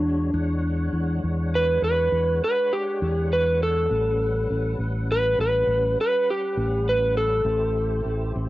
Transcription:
Already playing: E2 G#3 D4 F#4 C#5
0.33 E2 G#3 D4 C#5 F#5
0.93 E2
1.24 E2
1.55 B4
1.82 E2 B4
2.12 E2
2.44 B4
2.73 G4
3.02 E2
3.33 B4
3.63 A4
3.89 A1 G3 C#4 B4 F#5
4.50 A1
4.79 A1
5.12 B4
5.38 A1 B4
5.67 A1
6.01 B4
6.30 G4
6.57 A1
6.89 B4
7.17 A4
7.44 A1 A3 E4 G4 C5
8.05 A1
8.35 A1

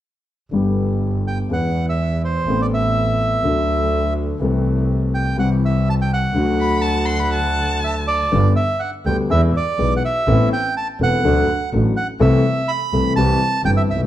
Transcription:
0.51 G1 G2 D3 G3 B3
0.55 G4
1.27 G5
1.51 E2 E3 G#3 B3 G#4 F#5
1.89 E5
2.25 C5
2.46 A1 A2 E3 B3 C4 A4
2.62 D5
2.74 E5
3.43 D2 D3 F#3 A3 D4 A4
4.39 C2 C3 E3 A3 C4
4.44 A4
5.14 G5
5.36 C2 C3 E3 G3 C4 F#5
5.40 G4
5.65 E5
5.89 A5
6.02 G5
6.13 F#5
6.35 D2 D3 F#3 A3 F#4
6.60 B5
6.82 A5
7.06 C6
7.20 B5
7.33 A5
7.84 E5
8.07 D5
8.32 G1 G2 D3 G3 B3 G4
8.56 E5
8.80 F#5
9.05 D2 D3 G3 B3 G4 G5
9.30 E2 E3 G#3 B3 G#4 E5
9.57 D5
9.78 B1 B2 E3 G#3 B3 G#4
9.97 F#5
10.05 E5
10.27 A1 A2 E3 B3 C4 A4
10.53 G5
10.77 A5
11.00 E1 E2 E3 B3 C4 A4 F#5
11.24 D2 D3 F#3 A3 D4 A4
11.73 A1 A2 F#3 A3 D4 A4
11.97 F#5
12.20 C2 C3 E3 A3 C4 A4 E5
12.68 B5
12.92 C2 C3 E3 A3 C4 A4
13.16 C2 C3 E3 G3 C4 G4 A5
13.63 G1 G2 E3 G3 C4 G4 G5
13.77 E5
13.89 C2 E5
13.96 B1
14.03 C2

